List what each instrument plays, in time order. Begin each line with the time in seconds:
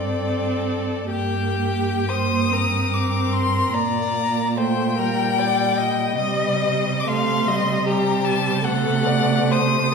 Already playing: cello G2, viola C4, violin A4 D5
1.09 cello G2, viola A#3, violin G4 G5
2.07 viola A#3, violin C5 D#6
2.51 viola C4, violin A#4
2.93 violin D6
3.33 violin C6
3.73 cello A#2, viola A#3, violin D5 A#5
4.56 viola A3, violin C5 G5
4.98 viola G3, violin A#4
5.39 violin D5
5.78 violin D#5
6.18 cello C3, viola G3, violin D#5
6.99 violin D6
7.07 viola A3, violin F5 C6
7.47 viola G3, violin D#5
7.86 viola G3, violin G4 A#5
8.24 violin A5
8.63 viola A3, violin A4 F#5
9.06 violin D5
9.51 violin C5 D#6